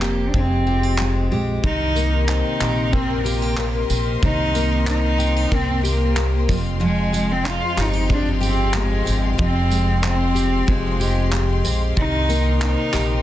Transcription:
Already playing: upright bass F1, twelve-string acoustic guitar F2 C4, steel-string acoustic guitar F3 C4, cello A#3
0.01 twelve-string acoustic guitar G4, steel-string acoustic guitar G4, clap
0.28 cello D4
0.34 upright bass F1, twelve-string acoustic guitar G#3, steel-string acoustic guitar C4, kick
0.39 cello C4
0.67 steel-string acoustic guitar F4, twelve-string acoustic guitar G4
0.83 steel-string acoustic guitar G4
0.98 twelve-string acoustic guitar G#3, clap
1.31 upright bass A#1, steel-string acoustic guitar G#3, twelve-string acoustic guitar G4
1.63 upright bass C2, twelve-string acoustic guitar C3, steel-string acoustic guitar D#3, cello D#4, string section A#4 D#5 G5 C6, kick
1.96 twelve-string acoustic guitar A#3, steel-string acoustic guitar A#3, tambourine
2.27 twelve-string acoustic guitar C4, steel-string acoustic guitar C4, cello D#4, clap
2.60 upright bass A#1, twelve-string acoustic guitar G4, steel-string acoustic guitar G4, clap, tambourine
2.92 twelve-string acoustic guitar A#3, cello C4, steel-string acoustic guitar C4, kick
3.19 cello C4
3.24 cello A#3, steel-string acoustic guitar F4, twelve-string acoustic guitar G4, tambourine
3.42 steel-string acoustic guitar G4
3.57 twelve-string acoustic guitar A#3, steel-string acoustic guitar C4, clap
3.90 upright bass A#1, twelve-string acoustic guitar C4, steel-string acoustic guitar G4, tambourine
4.23 upright bass C2, twelve-string acoustic guitar C3, steel-string acoustic guitar D#3, cello D#4, kick
4.55 twelve-string acoustic guitar A#3, steel-string acoustic guitar A#3, tambourine
4.87 twelve-string acoustic guitar C4, steel-string acoustic guitar C4, cello D#4, clap
5.18 steel-string acoustic guitar F4, twelve-string acoustic guitar G4, tambourine
5.37 steel-string acoustic guitar G4
5.51 upright bass C2, twelve-string acoustic guitar A#3, steel-string acoustic guitar C4, cello C4, kick
5.83 cello A#3, twelve-string acoustic guitar G4, steel-string acoustic guitar G4, tambourine
6.16 twelve-string acoustic guitar A#3, clap
6.48 upright bass F1, twelve-string acoustic guitar F2, steel-string acoustic guitar F3, string section G#3 F5 C6, kick, tambourine
6.80 twelve-string acoustic guitar F2, steel-string acoustic guitar F3, cello G#3
7.12 twelve-string acoustic guitar G#3, steel-string acoustic guitar G#3, tambourine
7.31 cello C4
7.44 twelve-string acoustic guitar C4, cello F4, clap
7.77 upright bass G1, cello D#4, steel-string acoustic guitar F4, twelve-string acoustic guitar G4, clap, tambourine
7.93 steel-string acoustic guitar G4
8.09 twelve-string acoustic guitar G#3, steel-string acoustic guitar C4, kick
8.14 cello D4
8.40 twelve-string acoustic guitar G4, steel-string acoustic guitar G4, tambourine
8.47 cello C4
8.74 twelve-string acoustic guitar G#3, steel-string acoustic guitar C4, clap
8.78 cello G#3
9.05 upright bass G1, twelve-string acoustic guitar C4, steel-string acoustic guitar G4, tambourine
9.38 upright bass F1, twelve-string acoustic guitar F2, steel-string acoustic guitar F3, kick
9.44 cello C4
9.70 twelve-string acoustic guitar G#3, steel-string acoustic guitar G#3, tambourine
10.02 twelve-string acoustic guitar C4, steel-string acoustic guitar C4, clap
10.06 cello C4
10.34 twelve-string acoustic guitar G4, steel-string acoustic guitar G4, tambourine
10.67 upright bass F1, twelve-string acoustic guitar G#3, cello G#3, steel-string acoustic guitar C4, kick
11.00 twelve-string acoustic guitar G4, steel-string acoustic guitar G4, tambourine
11.32 twelve-string acoustic guitar G#3, clap
11.64 upright bass A#1, twelve-string acoustic guitar C4, steel-string acoustic guitar G4, tambourine
11.95 upright bass C2, twelve-string acoustic guitar C3, steel-string acoustic guitar D#3, cello D#4, string section A#4 D#5, kick
12.29 twelve-string acoustic guitar A#3, steel-string acoustic guitar A#3, tambourine
12.60 twelve-string acoustic guitar C4, steel-string acoustic guitar C4, cello D#4, clap
12.93 upright bass A#1, twelve-string acoustic guitar G4, steel-string acoustic guitar G4, clap, tambourine

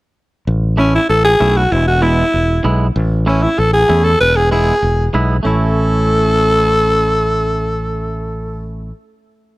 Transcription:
0.47 fingered electric bass A1
0.77 clean electric guitar A3 C#4 E4, alto saxophone C#4
0.95 alto saxophone E4
1.09 fingered electric bass A1, alto saxophone A4
1.25 alto saxophone G#4
1.40 fingered electric bass B1, clean electric guitar A3 C#4 E4
1.57 alto saxophone F#4
1.71 fingered electric bass E1, alto saxophone E4
1.87 alto saxophone F#4
2.02 clean electric guitar G#3 B3 E4, alto saxophone E4
2.34 fingered electric bass E1
2.64 fingered electric bass B1, clean electric guitar G#3 B3 E4
2.96 fingered electric bass A1
3.26 clean electric guitar A3 C#4 E4, alto saxophone C#4
3.43 alto saxophone E4
3.58 fingered electric bass A1, alto saxophone A4
3.73 alto saxophone G#4
3.89 fingered electric bass E2, clean electric guitar A3 C#4 E4
4.04 alto saxophone A4
4.20 fingered electric bass E1, alto saxophone B4
4.36 alto saxophone G#4
4.51 clean electric guitar G#3 B3 E4, alto saxophone G#4
4.82 fingered electric bass E1
5.14 fingered electric bass B1, clean electric guitar G#3 B3 E4
5.43 fingered electric bass A1, clean electric guitar A3 C#4 E4, alto saxophone A4

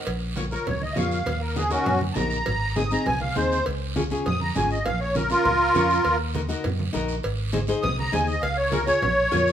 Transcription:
0.07 fingered electric bass A#1, cowbell, long guiro
0.36 nylon-string guitar F4 A#4 C#5, high conga, short guiro
0.51 nylon-string guitar F4 A#4 C#5, accordion A#4, short guiro
0.66 fingered electric bass C#2, accordion C#5, cowbell, low conga, long guiro
0.82 accordion D#5, high conga
0.93 nylon-string guitar F4 A#4, accordion E5, low timbale
0.97 fingered electric bass F2, nylon-string guitar C#5, accordion F5, high conga, low conga, short guiro
1.12 short guiro
1.26 fingered electric bass D#2, cowbell, low conga, long guiro
1.41 accordion A#4
1.56 nylon-string guitar D#4 F#4 A#4, accordion G#4, high conga, short guiro
1.70 accordion C#4 F#4, nylon-string guitar D#4 F#4 A#4, short guiro
1.85 fingered electric bass F#2, cowbell, low conga, long guiro
2.01 high conga
2.13 fingered electric bass A#1, nylon-string guitar D#4 F#4 A#4, accordion A5, high conga, low conga, low timbale, short guiro
2.17 accordion A#5
2.30 short guiro
2.46 fingered electric bass G#1, cowbell, low conga, long guiro
2.76 nylon-string guitar C4 D#4 G#4, accordion D#6, high conga, short guiro
2.91 nylon-string guitar C4 D#4 G#4, accordion A#5, short guiro
3.06 fingered electric bass C2, accordion G#5, cowbell, low conga, long guiro
3.21 accordion F5, high conga
3.35 fingered electric bass D#2, nylon-string guitar C4 D#4 G#4, accordion C5, high conga, short guiro
3.52 short guiro
3.66 fingered electric bass C#2, cowbell, long guiro
3.96 nylon-string guitar C#4 F4 G#4, high conga, short guiro
4.10 nylon-string guitar C#4 F4 G#4, short guiro
4.26 fingered electric bass F2, accordion D#6, cowbell, low conga, long guiro
4.41 accordion A#5, high conga
4.55 fingered electric bass G#1, nylon-string guitar C#4 F4 G#4, accordion G#5, high conga, low conga, short guiro
4.71 accordion D#5, short guiro
4.85 fingered electric bass A#1, accordion F5, cowbell, low conga, long guiro
5.01 accordion C#5
5.15 nylon-string guitar C#4 F4 A#4, accordion A#4, high conga, short guiro
5.30 nylon-string guitar C#4 F4 A#4, accordion F4 A#4, short guiro
5.45 fingered electric bass C#2, cowbell, low conga, long guiro
5.75 fingered electric bass F2, nylon-string guitar C#4 F4 C#5, high conga, short guiro
5.90 short guiro
6.04 fingered electric bass D#2, cowbell, long guiro
6.34 nylon-string guitar D#4 F#4 A#4, high conga, short guiro
6.49 nylon-string guitar D#4 F#4 A#4, short guiro
6.64 fingered electric bass F#2, cowbell, low conga, long guiro
6.79 high conga
6.93 fingered electric bass A#1, nylon-string guitar D#4 F#4 A#4, high conga, short guiro
7.08 short guiro
7.23 fingered electric bass G#1, cowbell, long guiro
7.52 nylon-string guitar D#4 G#4 C5, high conga, short guiro
7.67 nylon-string guitar D#4 G#4 C5, short guiro
7.82 fingered electric bass C2, accordion D#6, cowbell, low conga, long guiro
7.99 accordion A#5, high conga
8.12 fingered electric bass D#2, nylon-string guitar D#4 G#4 C5, accordion G#5, high conga, low timbale, short guiro
8.27 accordion D#5, short guiro
8.42 fingered electric bass C#2, accordion F5, cowbell, long guiro
8.57 accordion C#5
8.71 nylon-string guitar F4 G#4 C#5, accordion A#4, high conga, short guiro
8.86 nylon-string guitar F4 G#4 C#5, accordion C#5, short guiro
9.02 fingered electric bass A#1, cowbell, low conga, long guiro
9.32 fingered electric bass F2, nylon-string guitar F4 A#4 C#5, high conga, low conga, short guiro
9.47 short guiro

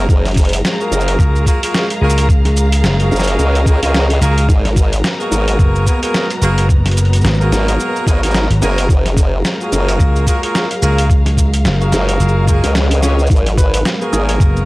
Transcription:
Already playing: string section F#3 A#5, analog synth pad F#3 G#3
0.09 wobble bass F#1, string section G#4, analog synth pad A#4 F5, kick, shaker
0.25 snare, closed hi-hat, shaker
0.28 closed hi-hat
0.31 closed hi-hat
0.34 kick, closed hi-hat
0.37 closed hi-hat, shaker
0.41 closed hi-hat
0.45 closed hi-hat
0.49 closed hi-hat
0.53 string section F5, closed hi-hat, shaker
0.65 snare, shaker
0.80 horn section A#3 F4 F#4 G#4 A#4, shaker
0.91 wobble bass F#1, shaker
1.00 shaker
1.08 closed hi-hat
1.19 slap bass C#2, kick, shaker
1.36 shaker
1.46 horn section A#3 F4 F#4 G#4 A#4, kick, shaker
1.63 horn section A#3 F4 F#4 G#4 A#4, closed hi-hat, shaker
1.74 snare, shaker
1.90 closed hi-hat, shaker
2.01 slap bass C#2, horn section A#3 F4 F#4 G#4 A#4
2.10 shaker
2.18 closed hi-hat, shaker
2.28 analog synth pad G#4, kick, shaker
2.45 snare, closed hi-hat, shaker
2.57 shaker
2.72 closed hi-hat, shaker
2.84 slap bass F#1, snare, shaker
3.00 horn section A#3 F4 F#4 G#4 A#4, closed hi-hat, shaker
3.12 wobble bass F#1, shaker
3.16 snare, shaker
3.19 shaker
3.23 shaker
3.27 closed hi-hat, shaker
3.39 wobble bass C#2, shaker
3.55 closed hi-hat, shaker
3.66 horn section A#3 F4 F#4 G#4 A#4, kick, shaker
3.82 wobble bass C#2, horn section A#3 F4 F#4 G#4 A#4, closed hi-hat, shaker
3.94 snare, shaker
4.10 closed hi-hat, shaker
4.21 slap bass C#2, horn section A#3 F4 F#4 G#4 A#4, snare, shaker
4.38 closed hi-hat, shaker
4.48 wobble bass G#1, analog synth pad F#3 B3 A#4, string section F#4, kick, shaker
4.65 string section B3, snare, closed hi-hat
4.76 kick, shaker
4.93 closed hi-hat, shaker
5.04 snare, shaker
5.20 horn section A#3 B3 F#4 G#4 A#4, shaker
5.32 wobble bass G#1, shaker
5.48 closed hi-hat, shaker
5.59 slap bass F#1, kick, shaker
5.75 shaker
5.87 horn section A#3 B3 F#4 G#4 A#4, kick, shaker
6.03 horn section A#3 B3 F#4 G#4 A#4, closed hi-hat, shaker
6.14 snare, shaker
6.30 closed hi-hat, shaker
6.42 slap bass F#1, horn section A#3 B3 F#4 G#4 A#4, shaker
6.58 closed hi-hat, shaker
6.69 kick, shaker
6.86 snare, closed hi-hat, shaker
6.91 closed hi-hat
6.97 closed hi-hat, shaker
7.05 closed hi-hat
7.13 closed hi-hat, shaker
7.16 shaker
7.21 slap bass G#1, snare, shaker
7.25 shaker
7.30 shaker
7.34 shaker
7.40 horn section A#3 B3 F#4 G#4 A#4, shaker
7.52 wobble bass G#1, snare, shaker
7.68 closed hi-hat, shaker
7.80 shaker
7.96 shaker
8.07 wobble bass G#1, horn section A#3 B3 F#4 G#4 A#4, kick, shaker
8.23 horn section A#3 B3 F#4 G#4 A#4, closed hi-hat, shaker
8.26 shaker
8.31 snare, shaker
8.35 shaker
8.50 slap bass G#1, closed hi-hat, shaker
8.62 wobble bass F#1, horn section A#3 B3 F#4 G#4 A#4, snare, shaker
8.78 closed hi-hat, shaker
8.89 wobble bass F#1, analog synth pad G#3 F5, string section G#4, kick, shaker
9.06 string section F5, snare, closed hi-hat, shaker
9.17 kick, shaker
9.45 snare, shaker
9.61 horn section A#3 F4 F#4 G#4 A#4, shaker
9.72 wobble bass F#1, shaker
9.88 closed hi-hat, shaker
9.99 slap bass C#2, kick, shaker
10.16 shaker
10.27 horn section A#3 F4 F#4 G#4 A#4, kick, shaker
10.43 horn section A#3 F4 F#4 G#4 A#4, closed hi-hat
10.55 snare, shaker
10.71 closed hi-hat, shaker
10.82 slap bass C#2, horn section A#3 F4 F#4 G#4 A#4, shaker
10.98 closed hi-hat, shaker
11.10 kick, shaker
11.26 snare, closed hi-hat, shaker
11.37 kick, shaker
11.54 closed hi-hat, shaker
11.65 slap bass F#1, snare, shaker
11.81 horn section A#3 F4 F#4 G#4 A#4, shaker
11.92 wobble bass F#1, snare, shaker
12.09 closed hi-hat, shaker
12.20 slap bass F#1, swell, shaker
12.28 shaker
12.47 horn section A#3 F4 F#4 G#4 A#4, kick, shaker
12.64 wobble bass C#2, closed hi-hat, shaker
12.75 snare, shaker
12.91 closed hi-hat, shaker
13.02 horn section C#4 F4 F#4 G#4 C#5, snare, shaker
13.19 shaker
13.26 wobble bass G#1, analog synth pad B3, kick, shaker
13.31 string section F#3, shaker
13.36 shaker
13.46 string section B3, snare, closed hi-hat, shaker
13.57 analog synth lead B4, kick, shaker
13.74 analog synth lead B4, closed hi-hat, shaker
13.85 snare, shaker
14.01 horn section A#3 B3 F#4 G#4 A#4, shaker
14.13 wobble bass G#1, analog synth lead G#4, shaker
14.29 analog synth lead G#4, closed hi-hat, shaker
14.40 slap bass F#1, kick, shaker
14.44 string section A#5
14.56 shaker

